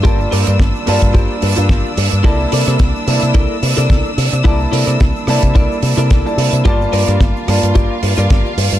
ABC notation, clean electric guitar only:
X:1
M:4/4
L:1/16
Q:"Swing 16ths" 1/4=109
K:Gdor
V:1 name="Clean electric guitar"
[FGBd] z [FGBd]2 z4 [FGBc]2 z [FGBf]3 z2 | [EABd] z [EABd]2 z4 [EABd]2 z [EABd]3 z2 | [EABd] z [EABd]2 z4 [EABd]2 z [EABd]3 z2 | [FGBd] z [FGBd]2 z4 [FGBd]2 z [FGBd]3 z2 |]